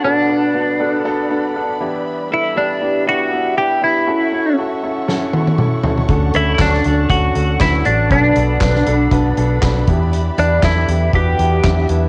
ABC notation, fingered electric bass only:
X:1
M:4/4
L:1/8
Q:"Swing 16ths" 1/4=119
K:Edor
V:1 name="Fingered electric bass" clef=bass
z8 | z8 | z8 | D,, D,, D,, D,, D,, D,, D,, A,,, |
B,,, B,,, B,,, B,,, B,,, B,,, B,,, E,,- | E,, E,, E,, E,, E,, E,, E,, E,, |]